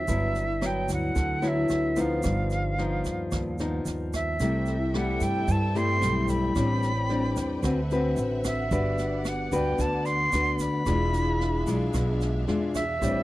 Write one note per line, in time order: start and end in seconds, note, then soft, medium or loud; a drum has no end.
0.00 0.68 E5 medium
0.08 0.85 G1 medium
0.08 1.13 G2 medium
0.08 0.43 F#3 medium
0.08 0.43 B3 medium
0.08 0.43 E4 medium
0.08 kick medium
0.08 snare soft
0.08 shaker medium
0.35 snare soft
0.35 shaker soft
0.61 1.39 F#3 medium
0.61 1.39 B3 medium
0.61 1.39 E4 medium
0.61 cross-stick medium
0.61 snare soft
0.61 shaker soft
0.66 0.91 G5 medium
0.89 1.14 D2 medium
0.89 kick soft
0.89 snare soft
0.89 shaker medium
0.93 1.50 F#5 medium
1.15 1.66 D2 medium
1.15 2.21 D3 medium
1.15 kick medium
1.15 snare soft
1.15 shaker medium
1.42 1.92 F#3 medium
1.42 1.92 B3 medium
1.42 1.93 E4 medium
1.42 snare soft
1.42 shaker soft
1.48 2.02 E5 medium
1.69 2.20 D2 medium
1.69 cross-stick medium
1.69 snare soft
1.69 shaker medium
1.96 2.74 F3 medium
1.96 2.74 B3 medium
1.96 2.74 D#4 medium
1.96 kick soft
1.96 snare soft
1.96 shaker medium
2.01 3.88 F5 medium
2.23 3.01 G1 loud
2.23 3.29 G2 medium
2.23 kick medium
2.23 cross-stick medium
2.23 snare soft
2.23 shaker medium
2.50 snare soft
2.50 shaker soft
2.78 3.55 F3 medium
2.78 3.55 B3 medium
2.78 3.56 D#4 medium
2.78 snare soft
3.05 3.30 D#2 medium
3.05 kick soft
3.05 snare soft
3.05 shaker medium
3.31 3.82 D#2 medium
3.31 4.38 G2 medium
3.31 kick medium
3.31 cross-stick medium
3.31 snare soft
3.31 shaker medium
3.58 4.36 F3 medium
3.58 4.36 B3 medium
3.58 4.36 D#4 medium
3.58 snare soft
3.58 shaker soft
3.85 4.36 D#2 medium
3.85 snare soft
3.85 shaker medium
4.13 4.99 E5 medium
4.13 kick soft
4.13 cross-stick medium
4.13 snare soft
4.13 shaker medium
4.39 5.17 C2 loud
4.39 5.46 C3 medium
4.39 4.76 G3 medium
4.39 4.76 A3 medium
4.39 8.67 C4 medium
4.39 4.76 E4 medium
4.39 6.53 A4 medium
4.39 6.53 E5 medium
4.39 6.53 G5 medium
4.39 kick medium
4.39 snare soft
4.39 shaker medium
4.66 snare soft
4.66 shaker soft
4.94 5.48 G3 soft
4.94 5.48 A3 medium
4.94 5.49 E4 medium
4.94 5.25 F#5 medium
4.94 cross-stick medium
4.94 snare soft
5.20 5.46 G2 medium
5.20 5.53 G5 medium
5.20 kick soft
5.20 snare soft
5.20 shaker medium
5.48 6.53 G2 medium
5.48 5.98 G2 medium
5.48 5.79 A5 loud
5.48 kick medium
5.48 snare soft
5.48 shaker medium
5.75 6.52 G3 medium
5.75 6.52 A3 medium
5.75 6.52 E4 medium
5.75 6.31 C6 loud
5.75 snare soft
5.75 shaker soft
6.01 6.52 B1 medium
6.01 cross-stick medium
6.01 snare soft
6.01 shaker medium
6.28 7.91 B5 loud
6.28 kick soft
6.28 snare soft
6.28 shaker medium
6.56 7.33 A1 loud
6.56 7.61 A2 medium
6.56 6.91 G3 medium
6.56 6.91 C4 medium
6.56 6.91 D4 medium
6.56 8.70 B4 medium
6.56 7.63 D5 medium
6.56 7.63 G5 medium
6.56 kick medium
6.56 cross-stick medium
6.56 snare soft
6.56 shaker medium
6.83 snare soft
6.83 shaker soft
7.09 7.61 G3 medium
7.09 7.61 C4 medium
7.09 7.62 D4 medium
7.09 snare soft
7.36 7.61 E2 medium
7.36 kick soft
7.36 snare soft
7.36 shaker medium
7.63 8.13 D2 medium
7.63 8.69 D3 medium
7.63 7.80 C4 medium
7.63 7.80 F#4 medium
7.63 7.80 B4 medium
7.63 8.70 E5 medium
7.63 10.83 F#5 medium
7.63 kick medium
7.63 cross-stick medium
7.63 snare soft
7.63 shaker medium
7.90 8.68 C4 medium
7.90 8.68 F#4 medium
7.90 8.68 B4 medium
7.90 snare soft
7.90 shaker soft
8.17 8.67 A1 medium
8.17 snare soft
8.17 shaker medium
8.44 9.30 E5 medium
8.44 kick soft
8.44 cross-stick medium
8.44 snare soft
8.44 shaker medium
8.71 9.48 G1 loud
8.71 9.77 G3 medium
8.71 10.85 B3 medium
8.71 9.48 D4 medium
8.71 9.48 F#4 medium
8.71 9.48 B4 medium
8.71 10.84 D5 medium
8.71 kick medium
8.71 snare soft
8.71 shaker medium
8.98 snare soft
8.98 shaker soft
9.25 9.55 F#5 medium
9.25 cross-stick medium
9.25 snare soft
9.25 shaker medium
9.52 9.77 D2 medium
9.52 10.28 D4 medium
9.52 10.29 F#4 medium
9.52 10.29 B4 medium
9.52 9.82 G5 medium
9.52 kick soft
9.52 snare soft
9.52 shaker medium
9.79 10.29 D2 medium
9.79 10.84 D3 medium
9.79 10.07 A5 medium
9.79 kick medium
9.79 snare soft
9.79 shaker medium
10.05 10.63 C6 loud
10.05 snare soft
10.05 shaker soft
10.32 10.83 D2 medium
10.32 10.83 D4 medium
10.32 10.83 F#4 soft
10.32 10.83 B4 medium
10.32 cross-stick medium
10.32 snare soft
10.32 shaker medium
10.59 12.22 B5 loud
10.59 kick soft
10.59 snare soft
10.59 shaker medium
10.86 11.63 E1 medium
10.86 11.92 E3 medium
10.86 11.63 G#3 soft
10.86 13.00 D4 medium
10.86 11.63 D4 medium
10.86 11.64 F4 medium
10.86 13.00 G#4 medium
10.86 13.00 E5 medium
10.86 13.00 F5 medium
10.86 kick medium
10.86 cross-stick medium
10.86 snare soft
10.86 shaker medium
11.13 snare soft
11.13 shaker soft
11.41 snare soft
11.67 11.92 B1 medium
11.67 12.43 G#3 medium
11.67 12.44 D4 medium
11.67 12.44 F4 medium
11.67 kick soft
11.67 snare soft
11.67 shaker medium
11.94 12.44 B1 medium
11.94 12.99 B2 medium
11.94 kick medium
11.94 cross-stick medium
11.94 snare soft
11.94 shaker medium
12.21 snare soft
12.21 shaker soft
12.48 12.98 E2 medium
12.48 12.83 G#3 soft
12.48 12.83 D4 medium
12.48 12.83 F4 medium
12.48 snare soft
12.75 13.23 E5 medium
12.75 kick soft
12.75 cross-stick medium
12.75 snare soft
12.75 shaker medium
13.02 13.23 A1 medium
13.02 13.23 A2 soft
13.02 13.23 G3 soft
13.02 13.23 C4 medium
13.02 13.23 D4 medium
13.02 13.23 G4 medium
13.02 13.23 B4 medium
13.02 13.23 D5 medium
13.02 kick medium
13.02 snare soft
13.02 shaker medium